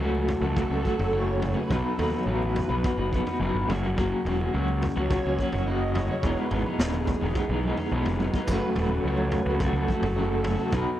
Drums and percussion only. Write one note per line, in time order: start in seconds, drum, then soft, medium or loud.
0.15 high conga medium
0.28 floor tom medium
0.28 low conga medium
0.43 high conga medium
0.56 kick loud
0.56 floor tom medium
0.85 kick medium
0.85 high conga medium
0.99 floor tom medium
1.42 floor tom medium
1.42 low conga medium
1.70 kick loud
1.70 floor tom medium
1.70 low conga medium
1.99 floor tom medium
1.99 low conga medium
2.14 high conga medium
2.43 high conga medium
2.56 floor tom medium
2.56 low conga medium
2.72 high conga medium
2.84 kick loud
2.84 floor tom medium
3.13 kick medium
3.13 high conga medium
3.27 floor tom medium
3.70 floor tom medium
3.70 low conga medium
3.98 kick loud
3.98 floor tom medium
3.98 low conga medium
4.26 floor tom medium
4.40 high conga medium
4.68 high conga medium
4.82 floor tom medium
4.82 low conga medium
4.97 high conga medium
5.10 kick loud
5.10 floor tom medium
5.38 kick medium
5.38 high conga medium
5.52 floor tom medium
5.95 floor tom medium
5.95 low conga medium
6.23 kick loud
6.23 floor tom medium
6.23 low conga medium
6.51 floor tom medium
6.51 low conga medium
6.66 high conga medium
6.80 snare medium
6.94 floor tom medium
6.94 mid tom medium
6.94 high conga medium
7.07 kick medium
7.07 floor tom medium
7.07 mid tom medium
7.07 high conga medium
7.07 low conga medium
7.21 high conga medium
7.35 kick loud
7.35 floor tom medium
7.63 high conga medium
7.77 floor tom medium
8.05 floor tom medium
8.05 high conga soft
8.19 high tom medium
8.19 low conga medium
8.34 kick medium
8.34 low conga medium
8.47 kick medium
8.47 floor tom medium
8.47 splash medium
8.47 low conga medium
8.76 floor tom medium
8.76 low conga medium
8.89 high conga medium
9.17 high conga medium
9.32 floor tom medium
9.32 low conga medium
9.47 high conga medium
9.60 kick loud
9.60 floor tom medium
9.88 kick medium
9.88 high conga medium
10.03 floor tom medium
10.44 floor tom medium
10.44 low conga medium
10.72 kick loud
10.72 floor tom medium
10.72 low conga medium